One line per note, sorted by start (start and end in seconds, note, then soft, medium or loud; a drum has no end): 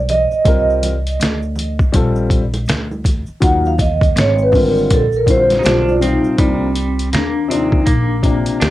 0.00 0.29 B1 loud
0.00 0.10 D5 medium
0.09 0.79 D#5 loud
0.09 closed hi-hat medium
0.09 low conga medium
0.09 shaker soft
0.31 muted upright bass stroke medium
0.31 shaker soft
0.44 1.16 C2 medium
0.44 0.91 G3 medium
0.44 0.92 C4 medium
0.44 0.92 F4 medium
0.44 0.93 A#4 medium
0.44 kick loud
0.44 closed hi-hat medium
0.44 shaker soft
0.70 shaker soft
0.83 closed hi-hat medium
0.83 high conga soft
0.83 low conga medium
0.83 shaker medium
1.07 closed hi-hat soft
1.07 shaker soft
1.20 1.76 D2 medium
1.20 snare loud
1.20 closed hi-hat medium
1.20 shaker medium
1.42 shaker soft
1.56 closed hi-hat medium
1.56 low conga medium
1.56 shaker soft
1.79 muted upright bass stroke soft
1.79 kick loud
1.79 shaker soft
1.92 2.64 A#1 loud
1.92 2.39 G3 medium
1.92 2.40 C4 medium
1.92 2.40 F4 medium
1.92 2.41 A4 medium
1.92 kick medium
1.92 closed hi-hat medium
1.92 shaker medium
2.16 shaker medium
2.30 kick medium
2.30 closed hi-hat medium
2.30 shaker soft
2.54 closed hi-hat soft
2.54 high conga medium
2.54 shaker soft
2.66 3.25 D2 medium
2.66 snare loud
2.66 closed hi-hat medium
2.66 shaker medium
2.91 high conga medium
2.91 shaker soft
3.04 kick medium
3.04 closed hi-hat medium
3.04 low conga medium
3.04 shaker soft
3.26 muted upright bass stroke soft
3.26 shaker soft
3.40 4.12 D#2 loud
3.40 3.70 F#3 medium
3.40 3.70 A#3 medium
3.40 3.71 D#4 medium
3.40 3.71 F4 medium
3.40 3.66 F#5 loud
3.40 kick loud
3.40 closed hi-hat medium
3.40 shaker soft
3.65 3.81 F5 loud
3.65 shaker soft
3.78 4.18 D#5 medium
3.78 kick medium
3.78 closed hi-hat medium
3.78 high conga medium
3.78 low conga medium
3.78 shaker soft
4.01 kick loud
4.01 closed hi-hat soft
4.01 shaker medium
4.16 4.86 G#1 loud
4.16 4.41 C#5 loud
4.16 snare loud
4.16 closed hi-hat medium
4.16 shaker medium
4.38 shaker soft
4.42 4.55 B4 loud
4.52 4.99 D3 medium
4.52 4.99 G3 medium
4.52 5.00 C4 medium
4.52 5.00 F4 medium
4.52 kick medium
4.52 open hi-hat soft
4.52 low conga medium
4.52 shaker soft
4.77 shaker soft
4.90 5.61 A#1 medium
4.90 5.15 A4 medium
4.90 kick medium
4.90 closed hi-hat medium
4.90 shaker medium
5.12 shaker medium
5.16 5.29 A#4 medium
5.26 5.82 D3 medium
5.26 5.82 G3 medium
5.26 5.83 C4 medium
5.26 5.36 E4 medium
5.26 kick medium
5.26 closed hi-hat medium
5.26 shaker soft
5.31 5.90 C5 loud
5.36 5.87 F4 medium
5.50 snare soft
5.50 closed hi-hat soft
5.50 high conga medium
5.50 shaker soft
5.59 5.64 D#4 medium
5.59 5.65 G4 medium
5.63 6.21 B1 loud
5.63 5.99 D4 medium
5.63 6.00 F4 medium
5.63 snare loud
5.63 closed hi-hat medium
5.63 shaker medium
5.88 6.06 D5 medium
5.88 high conga medium
5.88 shaker soft
6.00 6.36 C3 medium
6.00 6.38 G3 medium
6.00 6.36 C4 medium
6.00 6.39 C4 medium
6.00 6.40 D#4 medium
6.00 6.39 F4 medium
6.00 closed hi-hat medium
6.00 low conga medium
6.00 shaker soft
6.24 muted upright bass stroke soft
6.24 shaker medium
6.37 7.09 C2 loud
6.37 6.66 C3 medium
6.37 6.67 F3 medium
6.37 7.09 G3 medium
6.37 6.67 A#3 medium
6.37 7.15 C4 medium
6.37 6.68 D4 medium
6.37 kick loud
6.37 closed hi-hat medium
6.76 closed hi-hat medium
6.99 closed hi-hat soft
7.13 7.83 D#2 medium
7.13 7.47 A#3 medium
7.13 7.51 D4 medium
7.13 snare loud
7.13 closed hi-hat medium
7.48 7.77 C3 medium
7.48 7.78 F3 medium
7.48 7.79 A#3 medium
7.48 7.84 C4 medium
7.48 7.79 D4 medium
7.48 7.89 D#4 medium
7.48 closed hi-hat medium
7.72 kick loud
7.86 8.44 A#1 loud
7.86 8.56 A#3 medium
7.86 8.57 D4 medium
7.86 kick medium
7.86 closed hi-hat medium
8.22 8.69 C3 medium
8.22 8.70 F3 soft
8.22 8.70 A#3 medium
8.22 8.70 D4 medium
8.22 kick medium
8.22 closed hi-hat medium
8.46 muted upright bass stroke soft
8.46 closed hi-hat soft
8.60 8.70 D2 loud
8.60 8.70 D4 medium
8.60 8.70 G4 medium
8.60 snare loud
8.60 closed hi-hat medium